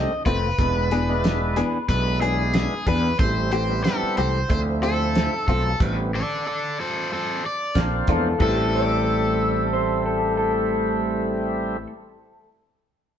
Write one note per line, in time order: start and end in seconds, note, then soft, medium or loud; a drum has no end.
0.00 0.12 G3 medium
0.00 0.12 A3 medium
0.00 0.13 C4 medium
0.00 0.13 D#4 medium
0.00 0.22 D#5 medium
0.26 0.52 F1 medium
0.26 0.47 D#3 medium
0.26 0.47 A3 medium
0.26 0.47 C4 medium
0.26 0.46 F4 medium
0.26 1.88 B4 loud
0.26 kick medium
0.26 closed hi-hat medium
0.59 1.61 E1 medium
0.59 0.90 G#3 medium
0.59 0.90 B3 medium
0.59 0.90 D4 medium
0.59 0.90 E4 medium
0.59 kick medium
0.59 closed hi-hat medium
0.91 1.13 E3 medium
0.91 1.12 B3 medium
0.91 1.12 D4 medium
0.91 1.12 G#4 medium
0.91 closed hi-hat medium
1.09 1.60 G#3 medium
1.09 1.61 B3 medium
1.09 1.61 D4 medium
1.09 1.61 E4 medium
1.24 snare loud
1.24 closed hi-hat medium
1.56 1.78 E3 medium
1.56 1.77 B3 medium
1.56 1.77 D4 medium
1.56 1.77 G#4 medium
1.56 closed hi-hat medium
1.89 2.66 B1 medium
1.89 2.74 G#3 medium
1.89 2.74 B3 medium
1.89 2.74 D4 medium
1.89 2.74 E4 medium
1.89 2.21 B4 medium
1.89 kick medium
1.89 closed hi-hat medium
2.21 2.43 E3 soft
2.21 2.43 B3 medium
2.21 2.43 D4 medium
2.21 2.53 G#4 medium
2.21 2.42 G#4 medium
2.21 closed hi-hat medium
2.54 2.88 G#4 medium
2.54 snare loud
2.54 closed hi-hat medium
2.87 3.13 E2 loud
2.87 3.08 E3 medium
2.87 3.08 B3 medium
2.87 3.08 D4 medium
2.87 3.08 G#4 medium
2.87 3.19 B4 medium
2.87 kick medium
2.87 closed hi-hat medium
3.19 3.84 A1 medium
3.19 3.51 G3 medium
3.19 3.51 A3 medium
3.19 3.51 C4 medium
3.19 3.51 E4 medium
3.19 3.52 C5 medium
3.19 kick loud
3.19 closed hi-hat medium
3.52 3.74 E3 medium
3.52 3.73 A3 medium
3.52 3.73 C4 medium
3.52 3.73 G4 medium
3.52 3.84 C5 medium
3.52 closed hi-hat medium
3.69 4.21 G3 medium
3.69 4.21 B3 medium
3.69 4.21 C4 medium
3.69 4.21 E4 medium
3.84 4.17 A4 medium
3.84 snare loud
3.84 closed hi-hat medium
4.03 muted fretless electric bass stroke soft
4.17 4.43 C2 medium
4.17 4.39 E3 medium
4.17 4.39 A3 medium
4.17 4.39 C4 medium
4.17 4.38 G4 medium
4.17 4.50 C5 medium
4.17 closed hi-hat medium
4.48 5.27 D2 loud
4.48 5.34 F3 medium
4.48 5.34 A3 medium
4.48 5.34 C4 medium
4.48 5.34 E4 medium
4.48 4.59 C5 medium
4.48 kick medium
4.48 closed hi-hat medium
4.83 5.04 A3 medium
4.83 5.03 C4 medium
4.83 5.03 F4 medium
4.83 5.47 A4 medium
4.83 closed hi-hat soft
5.15 snare medium
5.15 closed hi-hat medium
5.48 5.73 B1 medium
5.48 5.69 A3 medium
5.48 5.69 C4 medium
5.48 5.69 F4 medium
5.48 5.78 A4 medium
5.48 kick medium
5.48 closed hi-hat medium
5.79 6.22 A1 loud
5.79 6.11 G3 medium
5.79 6.11 B3 medium
5.79 6.12 C4 medium
5.79 6.12 E4 medium
5.79 kick loud
5.79 closed hi-hat medium
5.79 crash medium
6.15 6.45 A4 medium
6.15 6.46 D5 medium
6.47 6.76 A4 medium
6.47 6.78 D5 medium
6.80 7.09 A4 medium
6.80 7.11 C5 medium
7.13 7.42 A4 medium
7.13 7.44 C5 medium
7.46 7.76 D5 medium
7.75 8.01 A#1 medium
7.75 8.28 A#3 medium
7.75 8.28 C4 medium
7.75 8.28 D4 medium
7.75 8.28 F4 loud
7.75 8.09 A4 medium
7.75 kick medium
7.75 snare loud
7.75 closed hi-hat medium
8.07 8.34 E2 loud
8.07 8.30 F3 medium
8.07 8.29 G#3 medium
8.07 8.29 D4 medium
8.07 8.29 F4 medium
8.07 8.41 A4 medium
8.07 kick medium
8.07 closed hi-hat medium
8.39 11.85 A1 medium
8.39 11.89 E3 medium
8.39 11.77 G3 medium
8.39 11.77 A3 medium
8.39 11.77 C4 medium
8.39 11.77 E4 medium
8.39 11.87 A4 medium
8.39 kick loud
8.39 crash medium
8.43 11.93 A3 medium
8.49 11.99 G4 medium
8.75 9.69 D5 loud
9.73 10.04 C5 medium
10.06 10.36 A4 medium
10.37 12.48 A4 medium